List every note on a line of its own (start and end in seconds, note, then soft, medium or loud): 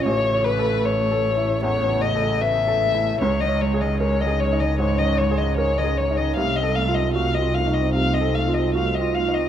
0.00 3.21 C#3 medium
0.04 3.23 A1 medium
0.04 1.59 A1 medium
0.04 2.41 A3 medium
0.04 3.21 E4 medium
0.04 0.45 C#5 medium
0.04 6.36 C#5 medium
0.33 0.74 C#5 medium
0.44 0.86 B4 medium
0.59 1.01 A4 soft
0.85 1.11 B4 soft
0.85 1.62 C#5 medium
1.11 1.53 A4 medium
1.37 1.79 E4 medium
1.63 2.05 E2 medium
1.63 2.03 C#5 medium
1.89 2.31 C#5 medium
2.01 2.43 D#5 medium
2.15 2.57 A4 medium
2.41 3.20 A3 medium
2.41 2.68 B4 soft
2.41 3.20 E5 medium
2.68 3.10 A4 medium
2.95 3.21 E4 medium
3.21 6.37 C#2 medium
3.21 4.75 C#2 medium
3.21 3.43 G#3 medium
3.21 6.32 C#4 medium
3.21 6.35 D#4 medium
3.21 3.42 C#5 medium
3.40 3.63 D#3 medium
3.40 3.62 D#5 medium
3.48 3.90 C#5 medium
3.61 3.82 G#3 medium
3.61 3.82 C#5 medium
3.74 4.16 G#4 medium
3.81 4.01 D#3 medium
3.81 4.00 D#5 medium
4.00 4.23 G#3 medium
4.00 4.27 A#4 soft
4.00 4.22 C#5 medium
4.20 4.42 D#3 medium
4.20 4.41 D#5 medium
4.26 4.69 G#4 medium
4.40 4.62 G#3 medium
4.40 4.61 C#5 medium
4.53 4.95 D#4 medium
4.60 4.80 D#3 medium
4.60 4.78 D#5 medium
4.79 5.21 G#2 medium
4.79 5.01 G#3 medium
4.79 4.99 C#5 medium
4.98 5.21 D#3 medium
4.98 5.19 D#5 medium
5.05 5.47 C#5 medium
5.17 5.40 G#3 medium
5.17 5.39 C#5 medium
5.31 5.73 G#4 medium
5.37 5.58 D#3 medium
5.37 5.56 D#5 medium
5.57 5.79 G#3 medium
5.57 5.84 A#4 soft
5.57 5.79 C#5 medium
5.78 6.00 D#3 medium
5.78 5.99 D#5 medium
5.84 6.26 G#4 medium
5.97 6.19 G#3 medium
5.97 6.18 C#5 soft
6.11 6.37 D#4 medium
6.16 6.37 D#3 medium
6.16 6.35 D#5 medium
6.36 9.49 C2 medium
6.36 7.90 C2 medium
6.36 6.57 A3 medium
6.36 9.49 D#4 medium
6.36 9.49 F4 medium
6.36 9.49 C5 medium
6.36 6.57 F5 medium
6.56 6.78 C4 medium
6.56 6.76 D#5 medium
6.63 7.05 A4 medium
6.75 6.98 A3 medium
6.75 6.96 F5 medium
6.88 7.30 F4 soft
6.94 7.15 C4 medium
6.94 7.13 D#5 medium
7.14 7.38 A3 medium
7.14 7.41 F#4 soft
7.14 7.36 F5 medium
7.34 7.58 C4 soft
7.34 7.55 D#5 medium
7.41 7.83 F4 medium
7.54 7.77 A3 medium
7.54 7.75 F5 medium
7.68 8.10 D#4 soft
7.73 7.95 C4 soft
7.73 7.93 D#5 soft
7.93 8.37 C3 soft
7.93 8.18 A3 medium
7.93 8.15 F5 medium
8.14 8.38 C4 medium
8.14 8.36 D#5 soft
8.21 8.64 A4 soft
8.34 8.58 A3 soft
8.34 8.55 F5 soft
8.48 8.91 F4 soft
8.53 8.75 C4 soft
8.53 8.74 D#5 soft
8.74 8.98 A3 medium
8.74 9.01 F#4 soft
8.74 8.96 F5 medium
8.94 9.18 C4 soft
8.94 9.15 D#5 soft
9.01 9.43 F4 soft
9.14 9.37 A3 soft
9.14 9.35 F5 soft
9.28 9.49 D#4 soft
9.34 9.49 C4 soft
9.34 9.49 D#5 soft